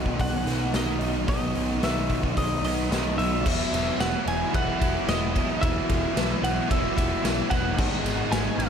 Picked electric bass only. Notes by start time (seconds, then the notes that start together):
Already playing: B1
0.20 B1
0.46 B1
0.73 B1
1.01 B1
1.27 B1
1.56 B1
1.83 B1
2.10 B1
2.37 B1
2.64 B1
2.91 B1
3.18 B1
3.46 E1
3.73 E1
3.98 E1
4.26 E1
4.54 E1
4.81 E1
5.08 E1
5.63 E1
5.89 E1
6.16 B1
6.42 B1
6.70 E1
6.98 E1
7.24 B1
7.51 E1
7.78 G#1
8.03 G#1
8.31 G#1
8.58 G#1